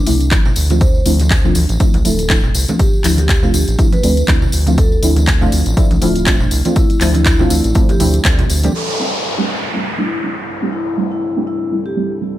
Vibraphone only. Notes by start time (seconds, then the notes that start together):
Already playing: D4
0.81 C5
2.05 A4
2.79 G4
3.18 G4
3.54 G4
3.93 B4
4.78 A4
6.02 F4
6.76 E4
7.15 E4
7.50 E4
7.89 G4
8.74 A4
9.98 E4
10.73 E4
11.11 E4
11.47 E4
11.86 G4